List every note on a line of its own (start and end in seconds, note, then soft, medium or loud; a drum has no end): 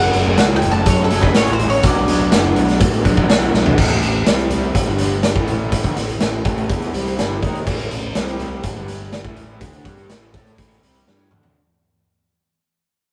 0.00 0.12 F#1 medium
0.00 1.09 F#2 medium
0.00 1.09 C#3 loud
0.00 1.10 F#3 medium
0.00 1.09 A3 loud
0.00 1.08 C#4 loud
0.00 1.82 C#4 medium
0.00 3.74 F#4 medium
0.00 1.82 A4 medium
0.00 0.37 F#5 loud
0.13 0.36 F#1 medium
0.13 closed hi-hat medium
0.26 high conga medium
0.38 0.60 C#2 medium
0.38 0.44 F#5 loud
0.38 snare loud
0.38 closed hi-hat loud
0.50 high conga medium
0.56 0.71 G5 loud
0.62 0.85 F#1 medium
0.62 closed hi-hat medium
0.62 low conga medium
0.72 0.86 A5 loud
0.86 1.09 F#2 medium
0.86 1.04 C#5 loud
0.86 kick loud
0.86 closed hi-hat medium
0.86 high conga medium
1.04 1.19 A4 medium
1.10 1.33 F#1 medium
1.10 1.33 F#2 medium
1.10 1.34 C#3 medium
1.10 1.34 F#3 medium
1.10 1.34 A3 medium
1.10 1.33 C#4 medium
1.10 closed hi-hat medium
1.21 1.36 B4 medium
1.21 kick medium
1.21 snare soft
1.34 1.80 A1 medium
1.34 1.82 F#2 medium
1.34 1.82 C#3 medium
1.34 1.83 F#3 medium
1.34 1.83 A3 medium
1.34 1.52 C#5 loud
1.34 snare loud
1.34 closed hi-hat loud
1.38 1.84 C#4 medium
1.47 closed hi-hat medium
1.47 high conga medium
1.53 1.69 C5 loud
1.59 closed hi-hat medium
1.59 low conga medium
1.70 1.85 C#5 medium
1.70 closed hi-hat medium
1.83 2.06 B1 medium
1.83 3.03 B2 medium
1.83 3.04 F#3 loud
1.83 3.04 B3 medium
1.83 3.76 D4 medium
1.83 3.03 D4 loud
1.83 3.76 B4 loud
1.83 3.51 D5 medium
1.83 kick loud
1.83 closed hi-hat loud
1.83 low conga medium
2.08 2.30 B1 medium
2.08 closed hi-hat medium
2.08 low conga medium
2.20 high conga medium
2.31 2.54 F#1 medium
2.31 snare loud
2.31 closed hi-hat loud
2.44 high conga medium
2.56 2.79 B1 medium
2.56 closed hi-hat medium
2.56 low conga medium
2.68 snare soft
2.68 closed hi-hat soft
2.80 3.03 A2 loud
2.80 kick loud
2.80 closed hi-hat loud
2.80 high conga medium
2.93 closed hi-hat soft
3.04 3.28 B1 medium
3.04 3.27 B2 medium
3.04 3.28 F#3 medium
3.04 3.28 B3 medium
3.04 3.28 D4 medium
3.04 kick medium
3.04 closed hi-hat medium
3.04 high conga medium
3.17 kick medium
3.28 3.52 B1 medium
3.28 3.76 B2 medium
3.28 3.76 F#3 medium
3.28 3.77 B3 medium
3.28 3.78 D4 medium
3.28 snare loud
3.28 closed hi-hat loud
3.42 closed hi-hat soft
3.42 high conga medium
3.53 3.76 B1 medium
3.53 snare medium
3.53 low conga medium
3.65 floor tom medium
3.65 low conga medium
3.76 4.01 A1 medium
3.76 4.01 A2 medium
3.76 4.01 E3 medium
3.76 4.02 A3 medium
3.76 4.26 E4 medium
3.76 4.25 A4 medium
3.76 4.86 C5 medium
3.76 kick loud
3.76 crash loud
3.89 closed hi-hat soft
3.89 high conga medium
4.01 4.25 A1 medium
4.01 4.22 A2 medium
4.01 4.22 E3 medium
4.01 closed hi-hat medium
4.01 low conga medium
4.26 4.72 C2 medium
4.26 4.74 C3 loud
4.26 4.74 G3 loud
4.26 4.74 C4 medium
4.26 4.75 C4 loud
4.26 4.74 G4 medium
4.26 snare loud
4.26 closed hi-hat loud
4.39 closed hi-hat soft
4.50 closed hi-hat medium
4.50 low conga medium
4.62 high conga medium
4.73 4.86 A1 medium
4.73 4.86 A2 medium
4.73 4.87 E3 medium
4.73 4.86 E4 medium
4.73 4.86 A4 medium
4.73 kick medium
4.73 closed hi-hat medium
4.86 5.32 G1 medium
4.86 5.34 G2 loud
4.86 5.34 D3 loud
4.86 5.34 G3 loud
4.86 5.35 D4 medium
4.86 5.35 G4 medium
4.86 5.35 D5 medium
4.99 closed hi-hat medium
4.99 high conga medium
5.23 snare loud
5.23 closed hi-hat loud
5.35 5.81 A1 loud
5.35 5.83 A2 medium
5.35 5.83 E3 medium
5.35 5.84 A3 loud
5.35 8.12 E4 medium
5.35 8.12 A4 medium
5.35 8.12 C5 medium
5.35 kick loud
5.47 closed hi-hat medium
5.47 low conga medium
5.72 kick loud
5.72 closed hi-hat loud
5.84 5.96 D2 medium
5.84 5.96 D3 medium
5.84 5.96 A3 loud
5.84 kick medium
5.84 closed hi-hat soft
5.84 high conga medium
5.96 6.19 A1 medium
5.96 6.16 A2 medium
5.96 6.16 E3 medium
5.96 snare soft
5.96 closed hi-hat medium
6.08 closed hi-hat soft
6.08 high conga medium
6.20 6.44 A1 medium
6.20 6.40 A2 medium
6.20 6.41 E3 medium
6.20 snare loud
6.20 closed hi-hat loud
6.44 6.68 A1 medium
6.44 6.68 A2 medium
6.44 6.68 E3 medium
6.44 6.69 A3 loud
6.44 kick loud
6.44 closed hi-hat medium
6.44 low conga medium
6.57 closed hi-hat soft
6.57 high conga medium
6.69 6.92 E2 medium
6.69 6.92 E3 loud
6.69 6.93 B3 loud
6.69 6.94 E4 loud
6.69 kick loud
6.69 closed hi-hat medium
6.82 closed hi-hat soft
6.93 7.17 C2 medium
6.93 7.17 C3 medium
6.93 7.17 G3 medium
6.93 7.17 C4 medium
6.93 closed hi-hat medium
6.93 high conga medium
7.06 closed hi-hat soft
7.17 7.41 G1 medium
7.17 7.41 G2 medium
7.17 7.41 D3 loud
7.17 7.42 G3 medium
7.17 snare loud
7.17 closed hi-hat loud
7.41 7.65 D#2 medium
7.41 7.65 D#3 medium
7.41 7.66 A#3 medium
7.41 7.66 D#4 medium
7.41 kick loud
7.41 closed hi-hat medium
7.41 low conga medium
7.55 closed hi-hat soft
7.66 7.89 A1 medium
7.66 7.90 A2 medium
7.66 7.90 E3 loud
7.66 7.91 A3 loud
7.66 kick loud
7.66 crash loud
7.78 closed hi-hat soft
7.78 high conga medium
7.90 8.13 A1 medium
7.90 8.11 A2 medium
7.90 8.11 E3 medium
7.90 closed hi-hat medium
7.90 low conga medium
8.03 high conga medium
8.15 8.61 C2 loud
8.15 8.63 C3 loud
8.15 8.64 G3 loud
8.15 8.63 C4 medium
8.15 8.64 C4 loud
8.15 8.63 G4 medium
8.15 8.75 C5 medium
8.15 snare loud
8.15 closed hi-hat loud
8.28 closed hi-hat soft
8.40 closed hi-hat medium
8.40 low conga medium
8.51 high conga medium
8.63 8.75 A1 medium
8.63 8.76 A2 medium
8.63 8.76 E3 medium
8.63 8.76 E4 medium
8.63 8.75 A4 medium
8.63 kick medium
8.63 closed hi-hat medium
8.75 9.21 G1 medium
8.75 9.24 G2 loud
8.75 9.24 D3 loud
8.75 9.24 G3 loud
8.75 9.24 D4 medium
8.75 9.24 G4 medium
8.75 9.24 D5 medium
8.88 closed hi-hat medium
8.88 high conga medium
9.12 snare loud
9.12 closed hi-hat loud
9.24 9.58 A1 loud
9.24 9.60 A2 medium
9.24 9.60 E3 medium
9.24 9.60 A3 loud
9.24 11.53 E4 medium
9.24 11.53 A4 medium
9.24 11.53 C5 medium
9.24 kick loud
9.37 closed hi-hat medium
9.37 low conga medium
9.60 9.84 D2 medium
9.60 9.84 D3 medium
9.60 9.85 A3 loud
9.60 9.85 D4 loud
9.60 kick loud
9.60 closed hi-hat loud
9.60 low conga medium
9.72 closed hi-hat medium
9.72 high conga medium
9.85 10.08 G2 loud
9.85 10.09 G3 medium
9.85 10.09 D4 loud
9.85 10.10 G4 loud
9.85 kick loud
9.85 closed hi-hat medium
9.97 closed hi-hat soft
9.97 high conga medium
10.10 10.32 A1 medium
10.10 10.33 A2 loud
10.10 10.33 E3 loud
10.10 10.33 A3 loud
10.10 snare loud
10.10 closed hi-hat loud
10.33 10.57 A2 medium
10.33 10.57 A3 medium
10.33 10.58 E4 medium
10.33 10.58 A4 loud
10.33 kick loud
10.33 closed hi-hat medium
10.33 high conga medium
10.33 low conga medium
10.45 closed hi-hat soft
10.45 high conga medium
10.58 10.81 A1 medium
10.58 10.81 A2 loud
10.58 10.82 E3 loud
10.58 10.82 A3 loud
10.58 kick medium
10.58 closed hi-hat loud
10.71 closed hi-hat soft
10.82 11.05 C2 medium
10.82 11.06 C3 medium
10.82 11.06 G3 medium
10.82 11.06 C4 medium
10.82 closed hi-hat medium
10.82 high conga medium
10.95 closed hi-hat soft
11.07 11.29 G2 medium
11.07 11.30 G3 medium
11.07 11.31 D4 medium
11.07 11.31 G4 loud
11.07 snare medium
11.30 11.54 D2 medium
11.30 11.54 D3 medium
11.30 11.55 A3 medium
11.30 11.55 D4 medium
11.30 mid tom medium
11.30 low conga medium
11.43 floor tom loud